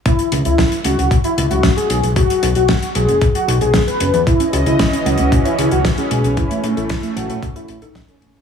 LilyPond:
<<
  \new Staff \with { instrumentName = "Analog synth lead" } { \time 4/4 \key b \mixolydian \tempo 4 = 114 e'8 r16 e'8 r16 fis'8 r16 e'8 fis'8 gis'8 r16 | fis'8 r16 fis'8 r16 gis'8 r16 fis'8 gis'8 b'8 r16 | e'8 r16 e'8 r16 fis'8 r16 e'8 fis'8 gis'8 r16 | e'8 r16 e'8 r16 fis'8 r16 e'8 dis'8 cis'8 r16 | }
  \new Staff \with { instrumentName = "Synth arpeggio sound" } { \time 4/4 \key b \mixolydian r1 | r1 | r16 cis'16 fis'16 cis''16 r16 cis'16 gis16 cis'16 r16 cis''16 gis'16 e'16 r16 cis'16 gis16 cis'16 | r16 a16 dis'16 a'16 r16 a16 e16 a16 r16 a'16 e'16 a'16 cis'16 a'16 b16 a'16 | }
  \new Staff \with { instrumentName = "Analog synth pad" } { \time 4/4 \key b \mixolydian << { r1 | r1 | <cis' dis''>1 | a1 | } \\ { r1 | r1 | e1~ | e1 | } >> }
  \new Staff \with { instrumentName = "Analog synth bass" } { \clef bass \time 4/4 \key b \mixolydian r8 cis,16 cis,16 r8 cis,16 cis,16 r8 cis,16 cis,16 r8 b,,16 b,,16 | r8 b,,16 b,,16 r8 b,,16 fis,,16 r8 b,,16 b,,16 r8 fis,,16 e,16 | r8 cis,16 cis,16 r8 cis,16 cis,16 r8 cis,16 cis,16 r8 b,,16 b,,16 | r8 a,16 a,,16 r8 a,,16 a,16 r8 a,,16 a,,16 r8 a,,16 a,,16 | }
  \new DrumStaff \with { instrumentName = "Drums" } \drummode { \time 4/4 <hh bd>16 hh16 hh16 hh16 <hh bd sn>16 hh16 hh16 hh16 <hh bd>16 hh16 hh16 hh16 <hh bd sn>16 hh16 hh16 hh16 | <hh bd>16 hh16 hh16 hh16 <hh bd sn>16 hh16 hh16 hh16 <hh bd>16 hh16 hh16 hh16 <hh bd sn>16 hh16 hh16 hh16 | <hh bd>16 hh16 hh16 hh16 <hh bd sn>16 hh16 hh16 hh16 <hh bd>16 hh16 hh16 hh16 <hh bd sn>16 hh16 hh16 hh16 | <hh bd>16 hh16 hh16 hh16 <hh bd sn>16 hh16 hh16 hh16 <hh bd>16 hh16 hh16 hh16 <hh bd sn>16 hh16 hh16 hh16 | }
>>